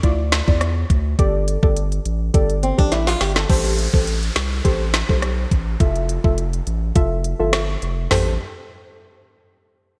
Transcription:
0.03 0.42 D2 loud
0.03 0.25 E4 loud
0.03 0.25 F4 medium
0.03 0.25 D5 loud
0.03 kick loud
0.03 closed hi-hat medium
0.32 finger snap loud
0.32 snare loud
0.32 closed hi-hat medium
0.47 0.85 E2 medium
0.47 0.68 E4 medium
0.47 0.68 F4 medium
0.47 0.68 D5 medium
0.47 kick loud
0.61 cross-stick loud
0.61 closed hi-hat medium
0.90 1.15 D2 medium
0.90 kick loud
0.90 closed hi-hat medium
1.19 1.57 G1 loud
1.19 1.59 G4 medium
1.19 1.59 A4 medium
1.19 1.59 D5 loud
1.19 kick loud
1.19 closed hi-hat medium
1.48 closed hi-hat medium
1.63 2.00 G1 loud
1.63 1.83 G4 medium
1.63 1.83 A4 medium
1.63 1.84 D5 medium
1.63 kick loud
1.77 closed hi-hat medium
1.92 closed hi-hat medium
2.05 2.30 A1 medium
2.05 closed hi-hat medium
2.34 2.73 G1 loud
2.34 2.55 G4 medium
2.34 2.55 A4 medium
2.34 2.56 D5 loud
2.34 kick loud
2.34 closed hi-hat medium
2.50 closed hi-hat medium
2.63 2.78 C4 medium
2.63 closed hi-hat medium
2.78 3.15 A1 medium
2.78 2.91 D4 medium
2.78 2.98 G4 medium
2.78 2.99 A4 medium
2.78 2.99 D5 medium
2.78 kick loud
2.92 3.07 E4 medium
2.92 snare medium
2.92 closed hi-hat medium
3.07 3.21 F4 medium
3.07 snare medium
3.07 closed hi-hat medium
3.21 3.46 G1 loud
3.21 3.35 G4 medium
3.21 snare medium
3.21 closed hi-hat medium
3.36 3.63 A4 medium
3.36 snare loud
3.49 3.88 A1 loud
3.49 3.90 G4 medium
3.49 3.90 A4 medium
3.49 3.90 C5 loud
3.49 kick loud
3.49 closed hi-hat medium
3.49 crash medium
3.49 downlifter medium
3.65 closed hi-hat medium
3.79 closed hi-hat medium
3.93 4.31 A1 medium
3.93 4.14 G4 medium
3.93 4.14 A4 medium
3.93 4.14 C5 medium
3.93 kick loud
4.07 closed hi-hat medium
4.23 closed hi-hat medium
4.36 4.61 C2 medium
4.36 finger snap medium
4.36 snare loud
4.36 closed hi-hat medium
4.65 5.03 A1 loud
4.65 4.86 G4 loud
4.65 4.86 A4 medium
4.65 4.86 C5 loud
4.65 kick loud
4.65 closed hi-hat medium
4.94 finger snap medium
4.94 snare loud
4.94 closed hi-hat medium
5.09 5.46 B1 loud
5.09 5.29 G4 medium
5.09 5.29 A4 medium
5.09 5.30 C5 medium
5.09 kick loud
5.22 cross-stick loud
5.22 closed hi-hat medium
5.51 5.77 A1 loud
5.51 kick medium
5.51 closed hi-hat medium
5.80 6.19 F1 loud
5.80 6.21 F4 medium
5.80 6.21 A4 medium
5.80 6.21 E5 loud
5.80 kick loud
5.80 closed hi-hat medium
5.96 closed hi-hat medium
6.09 closed hi-hat medium
6.24 6.61 F1 loud
6.24 6.45 F4 medium
6.24 6.45 A4 medium
6.24 6.45 E5 medium
6.24 kick loud
6.38 closed hi-hat medium
6.53 closed hi-hat medium
6.67 6.92 A1 medium
6.67 closed hi-hat medium
6.95 7.34 F1 loud
6.95 7.17 F4 medium
6.95 7.17 A4 medium
6.95 7.17 E5 loud
6.95 kick loud
6.95 closed hi-hat medium
7.24 closed hi-hat medium
7.39 7.77 G1 medium
7.39 7.60 F4 medium
7.39 7.60 A4 medium
7.39 7.60 E5 medium
7.53 finger snap loud
7.53 cross-stick loud
7.53 snare loud
7.53 closed hi-hat medium
7.82 8.07 F1 loud
7.82 closed hi-hat medium
8.11 8.38 A1 loud
8.11 8.33 G4 medium
8.11 8.33 A4 medium
8.11 8.33 C5 loud
8.11 snare loud
8.11 floor tom loud
8.11 open hi-hat medium

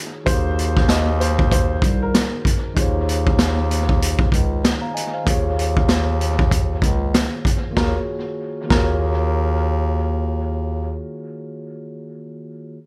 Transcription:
0.00 0.22 D#3 medium
0.00 0.23 D#4 medium
0.00 0.23 F4 medium
0.00 0.24 F#4 medium
0.00 0.25 G#4 medium
0.00 0.25 C#5 medium
0.24 1.79 D#2 loud
0.24 2.71 D#3 medium
0.24 2.72 D#4 medium
0.24 2.73 F#4 medium
0.24 0.85 C5 loud
0.24 kick loud
0.24 closed hi-hat medium
0.28 2.73 G#4 medium
0.28 2.74 A#4 medium
0.28 2.75 C5 medium
0.59 closed hi-hat medium
0.77 kick loud
0.77 snare soft
0.89 1.17 D#5 medium
0.89 snare loud
0.89 closed hi-hat medium
1.20 1.49 C5 medium
1.20 closed hi-hat medium
1.39 kick medium
1.52 1.98 C5 medium
1.52 kick loud
1.52 closed hi-hat loud
1.82 2.27 C2 medium
1.82 kick loud
1.82 closed hi-hat medium
2.03 2.73 A#4 medium
2.15 snare loud
2.15 closed hi-hat medium
2.45 kick medium
2.45 closed hi-hat medium
2.74 4.29 D#2 loud
2.74 4.59 D#3 medium
2.74 4.60 D#4 medium
2.74 4.60 F4 medium
2.74 kick loud
2.74 closed hi-hat medium
2.78 4.61 G#4 medium
2.78 4.31 C5 medium
2.78 4.32 C#5 medium
3.09 closed hi-hat medium
3.27 kick loud
3.39 snare loud
3.39 closed hi-hat medium
3.71 closed hi-hat medium
3.89 kick medium
4.02 closed hi-hat loud
4.19 kick loud
4.32 4.77 C#2 medium
4.32 kick loud
4.32 closed hi-hat medium
4.65 snare loud
4.65 closed hi-hat medium
4.81 4.95 F5 medium
4.81 4.94 A#5 medium
4.94 5.12 D#5 medium
4.94 5.12 G#5 medium
4.94 closed hi-hat medium
5.14 5.44 C5 medium
5.14 5.43 F5 medium
5.23 6.79 D#2 loud
5.23 7.69 D#3 medium
5.23 7.71 A#3 medium
5.23 7.73 F4 medium
5.23 kick loud
5.23 closed hi-hat medium
5.29 7.74 G#4 medium
5.29 7.74 C#5 loud
5.59 closed hi-hat medium
5.77 kick medium
5.89 snare loud
5.89 closed hi-hat medium
6.21 closed hi-hat medium
6.39 kick medium
6.51 kick loud
6.51 closed hi-hat loud
6.82 7.27 C#2 medium
6.82 kick loud
6.82 closed hi-hat medium
7.14 snare loud
7.14 closed hi-hat medium
7.45 kick medium
7.45 closed hi-hat medium
7.70 7.93 D#3 medium
7.70 7.94 A#3 medium
7.75 7.96 D#2 medium
7.75 7.95 F4 medium
7.75 7.97 F#4 medium
7.75 7.96 A#4 medium
7.75 kick loud
7.75 snare medium
7.81 7.98 G#4 medium
7.81 8.00 C#5 medium
8.64 11.69 D#3 medium
8.64 11.71 A#3 medium
8.69 11.03 D#2 loud
8.69 11.72 F4 medium
8.69 11.73 F#4 medium
8.69 9.60 A#4 medium
8.69 kick loud
8.69 snare medium
8.75 11.75 G#4 medium
8.75 11.76 C#5 medium

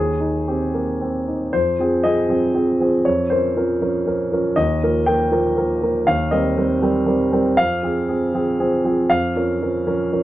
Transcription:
0.00 1.49 D#2 soft
0.00 0.46 G#4 medium
0.20 0.63 D#4 soft
0.48 0.90 C4 soft
0.48 1.27 G4 soft
0.74 1.16 A#3 soft
1.01 1.43 C4 soft
1.28 1.53 D#4 soft
1.53 1.78 F2 soft
1.53 2.03 C5 medium
1.80 2.02 F3 soft
1.80 2.02 C4 soft
1.80 2.02 G#4 soft
2.04 2.27 F3 soft
2.04 2.27 C4 soft
2.04 2.27 G#4 soft
2.04 3.06 D#5 medium
2.29 2.52 F3 soft
2.29 2.52 C4 soft
2.29 2.52 G#4 soft
2.54 2.77 F3 soft
2.54 2.77 C4 soft
2.54 2.78 G#4 soft
2.80 3.03 F3 soft
2.80 3.03 C4 soft
2.80 3.04 G#4 soft
3.05 3.30 F2 soft
3.05 3.30 C#5 soft
3.30 3.53 F3 soft
3.30 3.53 C#4 soft
3.30 3.54 A#4 soft
3.30 4.31 C5 medium
3.56 3.79 F3 soft
3.56 3.79 C#4 soft
3.56 3.79 A#4 soft
3.81 4.04 F3 soft
3.81 4.04 C#4 soft
3.81 4.04 A#4 soft
4.06 4.29 F3 soft
4.06 4.29 C#4 soft
4.06 4.30 A#4 soft
4.32 4.55 F3 soft
4.32 4.55 C#4 soft
4.32 4.55 A#4 soft
4.56 4.81 D#2 soft
4.56 5.07 D#5 medium
4.83 5.06 F3 soft
4.83 5.05 A#3 soft
4.83 5.06 A#4 soft
5.06 5.30 F3 soft
5.06 5.30 A#3 soft
5.06 5.30 A#4 soft
5.06 6.07 G5 medium
5.32 5.55 F3 soft
5.32 5.55 A#3 soft
5.32 5.55 A#4 soft
5.57 5.80 F3 soft
5.57 5.80 A#3 soft
5.57 5.80 A#4 soft
5.83 6.05 F3 soft
5.83 6.06 A#3 soft
5.83 6.06 A#4 soft
6.07 6.32 D#2 soft
6.07 6.32 F5 medium
6.31 6.55 G3 soft
6.31 6.55 C4 soft
6.31 6.55 A#4 soft
6.31 7.32 D#5 medium
6.57 6.80 G3 soft
6.57 6.81 C4 soft
6.57 6.81 A#4 soft
6.82 7.05 G3 soft
6.82 7.06 C4 soft
6.82 7.06 A#4 soft
7.06 7.30 G3 soft
7.06 7.30 C4 soft
7.06 7.30 A#4 soft
7.32 7.55 G3 soft
7.32 7.56 C4 soft
7.32 7.56 A#4 soft
7.57 7.83 F2 medium
7.57 9.08 F5 medium
7.83 8.06 F3 soft
7.83 8.07 C4 soft
7.83 8.07 G#4 soft
8.09 8.32 F3 soft
8.09 8.32 C4 soft
8.09 8.32 G#4 soft
8.34 8.57 F3 soft
8.34 8.57 C4 soft
8.34 8.57 G#4 soft
8.59 8.82 F3 soft
8.59 8.83 C4 soft
8.59 8.83 G#4 soft
8.84 9.08 F3 soft
8.84 9.08 C4 soft
8.84 9.08 G#4 soft
9.10 9.35 F2 soft
9.10 10.23 F5 medium
9.36 9.59 F3 soft
9.36 9.59 C#4 soft
9.36 9.59 A#4 soft
9.62 9.84 F3 soft
9.62 9.85 C#4 soft
9.62 9.85 A#4 soft
9.87 10.10 F3 soft
9.87 10.10 C#4 soft
9.87 10.10 A#4 soft
10.12 10.23 F3 soft
10.12 10.23 C#4 soft
10.12 10.23 A#4 soft

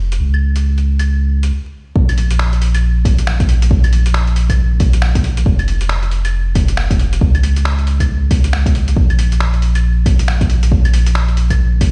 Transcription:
0.00 0.19 F1 medium
0.12 closed hi-hat soft
0.20 1.52 C#2 medium
0.34 claves soft
0.56 closed hi-hat medium
0.78 closed hi-hat soft
0.99 closed hi-hat medium
0.99 claves soft
1.43 closed hi-hat medium
1.96 5.44 A#1 medium
1.96 kick loud
2.09 closed hi-hat soft
2.09 claves medium
2.18 open hi-hat medium
2.31 closed hi-hat medium
2.39 finger snap loud
2.53 closed hi-hat soft
2.62 open hi-hat medium
2.75 closed hi-hat medium
2.75 claves medium
3.05 kick loud
3.05 open hi-hat medium
3.18 closed hi-hat medium
3.27 finger snap loud
3.40 kick loud
3.40 closed hi-hat soft
3.49 open hi-hat medium
3.62 closed hi-hat medium
3.71 kick loud
3.84 closed hi-hat soft
3.84 claves medium
3.93 open hi-hat medium
4.06 closed hi-hat medium
4.14 finger snap loud
4.27 closed hi-hat soft
4.36 open hi-hat medium
4.50 kick medium
4.50 closed hi-hat medium
4.50 claves medium
4.80 kick loud
4.80 open hi-hat medium
4.93 closed hi-hat medium
5.02 finger snap loud
5.15 kick loud
5.15 closed hi-hat soft
5.24 open hi-hat medium
5.37 closed hi-hat medium
5.46 7.19 F1 medium
5.46 kick loud
5.59 closed hi-hat soft
5.59 claves medium
5.68 open hi-hat medium
5.81 closed hi-hat medium
5.89 finger snap loud
6.03 closed hi-hat soft
6.11 open hi-hat medium
6.25 closed hi-hat medium
6.25 claves medium
6.55 kick loud
6.55 open hi-hat medium
6.68 closed hi-hat medium
6.77 finger snap loud
6.91 kick loud
6.91 closed hi-hat soft
6.99 open hi-hat medium
7.13 closed hi-hat medium
7.21 8.95 C#2 medium
7.21 kick loud
7.35 closed hi-hat soft
7.35 claves soft
7.43 open hi-hat medium
7.56 closed hi-hat medium
7.65 finger snap loud
7.79 closed hi-hat soft
7.87 open hi-hat medium
8.00 kick medium
8.00 closed hi-hat medium
8.00 claves soft
8.31 kick loud
8.31 open hi-hat medium
8.44 closed hi-hat medium
8.53 finger snap loud
8.66 kick loud
8.66 closed hi-hat soft
8.75 open hi-hat medium
8.88 closed hi-hat medium
8.96 11.91 A#1 medium
8.96 kick loud
9.10 closed hi-hat soft
9.10 claves medium
9.19 open hi-hat medium
9.32 closed hi-hat medium
9.40 finger snap loud
9.54 closed hi-hat soft
9.62 open hi-hat medium
9.75 closed hi-hat medium
9.75 claves soft
10.06 kick loud
10.06 open hi-hat medium
10.19 closed hi-hat medium
10.28 finger snap loud
10.41 kick loud
10.41 closed hi-hat soft
10.50 open hi-hat medium
10.63 closed hi-hat medium
10.72 kick loud
10.85 closed hi-hat soft
10.85 claves medium
10.94 open hi-hat medium
11.06 closed hi-hat medium
11.15 finger snap loud
11.28 closed hi-hat soft
11.37 open hi-hat medium
11.50 kick medium
11.50 closed hi-hat medium
11.50 claves medium
11.81 kick loud
11.81 open hi-hat medium

